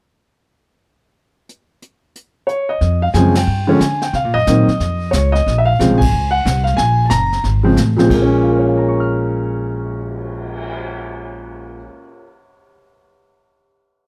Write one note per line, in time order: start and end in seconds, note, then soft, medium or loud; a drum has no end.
1.49 closed hi-hat soft
1.82 closed hi-hat medium
2.15 closed hi-hat medium
2.47 2.70 C#5 medium
2.47 closed hi-hat soft
2.69 3.00 D#5 medium
2.81 3.13 F2 medium
2.81 brush sweep soft
2.81 kick soft
2.81 snare soft
3.02 3.07 F5 medium
3.14 3.46 F#2 medium
3.14 3.34 C#3 medium
3.14 3.34 F3 medium
3.14 3.34 G#3 medium
3.14 3.34 C4 medium
3.14 3.36 G#5 medium
3.14 kick soft
3.14 snare soft
3.14 hi-hat pedal soft
3.35 3.78 G5 medium
3.35 snare medium
3.35 ride medium
3.47 3.80 G2 medium
3.47 brush sweep soft
3.67 3.79 D3 medium
3.67 3.79 F3 medium
3.67 3.79 G#3 medium
3.67 3.80 C#4 medium
3.79 4.13 D3 medium
3.79 4.02 G#5 medium
3.79 kick soft
3.79 snare medium
3.79 hi-hat pedal medium
4.02 4.14 G5 medium
4.02 snare soft
4.13 4.24 C3 medium
4.13 4.36 F5 medium
4.13 brush sweep soft
4.13 kick soft
4.13 snare soft
4.24 4.34 A#2 medium
4.34 4.45 F#2 medium
4.34 5.15 D#5 loud
4.47 4.67 A#2 medium
4.47 4.66 D#3 medium
4.47 4.66 F#3 soft
4.47 4.66 A#3 soft
4.47 4.67 C4 medium
4.47 kick soft
4.47 snare medium
4.47 hi-hat pedal soft
4.68 muted upright bass stroke soft
4.68 snare soft
4.80 5.12 F2 medium
4.80 brush sweep soft
4.80 kick soft
4.80 snare soft
5.11 5.45 C#2 medium
5.11 5.32 C#5 medium
5.11 kick soft
5.11 snare medium
5.11 hi-hat pedal medium
5.32 5.56 D#5 medium
5.32 snare soft
5.46 5.78 A#1 medium
5.46 brush sweep medium
5.46 kick soft
5.46 snare soft
5.58 5.67 E5 medium
5.65 5.97 F5 medium
5.79 5.90 C2 medium
5.79 5.98 C#3 medium
5.79 5.99 F3 soft
5.79 5.99 G#3 medium
5.79 5.99 C4 medium
5.79 kick soft
5.79 snare medium
5.79 hi-hat pedal soft
5.90 6.00 A#1 soft
5.98 6.11 G#1 medium
5.98 6.33 G#5 medium
5.98 kick medium
5.98 ride medium
6.12 6.44 C#2 medium
6.12 brush sweep soft
6.31 6.63 F#5 medium
6.45 6.77 C2 medium
6.45 kick soft
6.45 snare medium
6.45 hi-hat pedal medium
6.64 6.77 F5 medium
6.64 snare soft
6.77 7.10 A#1 medium
6.77 7.03 G#5 medium
6.77 brush sweep soft
6.77 kick soft
6.77 snare soft
7.05 7.11 A5 medium
7.10 7.43 F#1 medium
7.10 7.41 A#5 loud
7.10 kick soft
7.10 snare medium
7.10 hi-hat pedal soft
7.32 snare soft
7.44 7.76 G#1 medium
7.44 brush sweep soft
7.44 kick soft
7.44 snare soft
7.63 7.75 C#3 medium
7.63 7.75 F3 medium
7.63 7.75 G#3 medium
7.63 7.76 C4 medium
7.76 8.09 A1 medium
7.76 kick soft
7.76 snare medium
7.76 hi-hat pedal soft
7.96 11.78 A#2 medium
7.96 8.09 C#3 medium
7.96 8.09 F3 medium
7.96 8.04 G#3 medium
7.96 8.09 C4 medium
7.96 snare soft
8.05 11.87 G#3 medium
8.10 11.88 A#1 medium
8.10 11.95 A#3 medium
8.10 kick medium
8.10 crash medium
8.22 12.04 C#4 medium
8.32 cymbal swell soft
8.43 12.20 F4 soft
8.50 12.24 A#4 soft
8.59 12.28 C#5 soft
8.67 12.32 F5 soft
8.77 12.38 A#5 soft
8.88 12.43 C#6 soft
9.00 12.49 F6 soft